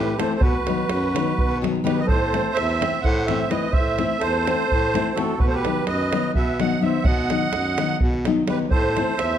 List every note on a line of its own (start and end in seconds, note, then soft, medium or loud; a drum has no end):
0.00 0.14 A2 medium
0.00 0.13 E3 medium
0.00 0.13 A3 medium
0.00 0.13 C4 medium
0.00 0.14 E4 medium
0.00 0.17 G4 medium
0.00 0.19 B4 medium
0.18 0.35 E3 medium
0.18 0.36 A3 medium
0.18 0.36 C4 medium
0.18 0.36 E4 medium
0.18 0.33 A4 medium
0.18 0.33 C5 medium
0.18 davul high medium
0.35 0.42 A4 medium
0.35 0.42 C5 medium
0.40 0.57 B2 medium
0.40 1.58 F#4 medium
0.40 1.58 B4 medium
0.40 davul low loud
0.55 davul high soft
0.67 0.84 D#3 medium
0.67 0.84 F#3 medium
0.67 0.84 B3 medium
0.67 0.84 D#4 medium
0.67 davul high medium
0.89 1.19 F#2 medium
0.89 davul high medium
1.03 davul high soft
1.14 1.32 D#3 medium
1.14 1.32 F#3 medium
1.14 1.32 B3 medium
1.14 1.33 D#4 medium
1.14 davul high medium
1.28 davul high soft
1.38 1.79 B2 medium
1.38 davul low medium
1.52 davul high soft
1.62 1.78 D#3 medium
1.62 1.79 F#3 medium
1.62 1.79 B3 medium
1.62 1.79 D#4 medium
1.62 davul high medium
1.75 davul high soft
1.84 2.01 D#3 medium
1.84 2.01 F#3 medium
1.84 2.02 B3 medium
1.84 2.02 D#4 medium
1.84 2.00 G4 medium
1.84 1.99 B4 medium
1.84 davul high medium
1.99 2.07 B4 medium
1.99 2.07 D#5 medium
2.06 2.36 A2 medium
2.06 2.52 A4 medium
2.06 2.57 C5 medium
2.06 davul low medium
2.33 2.50 E3 medium
2.33 2.50 A3 medium
2.33 2.50 C4 medium
2.33 2.50 E4 medium
2.33 davul high medium
2.54 2.84 E2 medium
2.54 3.00 C5 medium
2.54 3.05 E5 loud
2.54 davul high medium
2.70 davul high soft
2.81 2.98 E3 medium
2.81 2.98 A3 soft
2.81 2.98 C4 soft
2.81 2.99 E4 medium
2.81 davul high medium
2.94 davul high soft
3.02 3.45 A2 loud
3.02 3.26 C5 medium
3.02 3.26 F#5 medium
3.02 davul low medium
3.26 3.45 E3 medium
3.26 3.45 A3 medium
3.26 3.45 C4 medium
3.26 3.49 C5 medium
3.26 3.50 E5 medium
3.26 davul high medium
3.31 3.46 E4 medium
3.49 3.67 E3 medium
3.49 3.67 A3 medium
3.49 3.67 C4 medium
3.49 3.68 E4 medium
3.49 3.71 B4 medium
3.49 3.73 D#5 medium
3.49 davul high medium
3.71 4.01 A2 medium
3.71 4.17 C5 medium
3.71 4.23 E5 loud
3.71 davul low medium
3.98 4.15 E3 medium
3.98 4.15 A3 medium
3.98 4.16 C4 medium
3.98 4.16 E4 medium
3.98 davul high medium
4.19 4.50 E2 medium
4.19 5.11 A4 medium
4.19 5.19 C5 loud
4.19 davul high medium
4.34 davul high soft
4.47 4.64 E3 medium
4.47 4.64 A3 medium
4.47 4.64 C4 medium
4.47 4.64 E4 medium
4.47 davul high medium
4.59 davul high soft
4.69 4.95 A2 medium
4.69 davul low medium
4.94 5.10 E3 medium
4.94 5.11 A3 medium
4.94 5.11 C4 medium
4.94 5.11 E4 medium
4.94 davul high medium
5.07 davul high soft
5.15 5.33 E3 medium
5.15 5.33 A3 medium
5.15 5.33 C4 medium
5.15 5.34 E4 medium
5.15 5.36 F#4 medium
5.15 5.39 A4 medium
5.15 davul high medium
5.37 5.68 B2 medium
5.37 5.45 F#4 medium
5.37 5.46 B4 medium
5.37 davul low medium
5.48 5.54 A4 medium
5.48 5.55 C5 medium
5.53 5.84 G4 medium
5.53 5.85 B4 loud
5.64 5.81 D#3 medium
5.64 5.81 F#3 medium
5.64 5.82 B3 medium
5.64 5.82 D#4 medium
5.64 davul high medium
5.85 6.16 F#2 medium
5.85 6.31 B4 medium
5.85 6.32 D#5 loud
5.85 davul high medium
6.12 6.29 D#3 medium
6.12 6.29 F#3 medium
6.12 6.30 B3 medium
6.12 6.30 D#4 medium
6.12 davul high medium
6.24 davul high soft
6.34 6.77 B2 medium
6.34 6.58 B4 medium
6.34 6.58 E5 medium
6.34 davul low medium
6.59 6.76 D#3 medium
6.59 6.76 F#3 medium
6.59 6.76 B3 medium
6.59 6.77 D#4 medium
6.59 6.81 D#5 medium
6.59 6.80 F#5 medium
6.59 davul high medium
6.71 davul high soft
6.81 6.98 D#3 medium
6.81 6.98 F#3 medium
6.81 6.99 B3 medium
6.81 6.99 D#4 medium
6.81 7.04 C5 medium
6.81 7.05 E5 medium
7.04 7.33 B2 medium
7.04 7.98 D#5 medium
7.04 7.97 F#5 medium
7.04 davul low loud
7.29 7.46 D#3 medium
7.29 7.47 F#3 medium
7.29 7.47 B3 medium
7.29 7.47 D#4 medium
7.29 davul high medium
7.42 davul high soft
7.53 7.82 F#2 medium
7.53 davul high medium
7.65 davul high soft
7.78 7.95 D#3 medium
7.78 7.95 F#3 medium
7.78 7.95 B3 medium
7.78 7.96 D#4 medium
7.78 davul high medium
7.89 davul high soft
8.00 8.42 B2 medium
8.00 davul low medium
8.14 davul high soft
8.25 8.42 D#3 medium
8.25 8.42 F#3 medium
8.25 8.42 B3 medium
8.25 8.43 D#4 medium
8.25 davul high medium
8.47 8.64 D#3 medium
8.47 8.64 F#3 medium
8.47 8.65 B3 medium
8.47 8.65 D#4 medium
8.47 8.59 G4 medium
8.47 8.58 B4 medium
8.47 davul high medium
8.59 davul high soft
8.70 8.99 A2 medium
8.70 9.15 A4 medium
8.70 9.20 C5 medium
8.70 davul low medium
8.96 9.12 E3 medium
8.96 9.13 A3 medium
8.96 9.13 C4 medium
8.96 9.13 E4 medium
8.96 davul high medium
9.17 9.38 E2 medium
9.17 9.38 C5 medium
9.17 9.38 E5 loud
9.17 davul high medium
9.32 davul high soft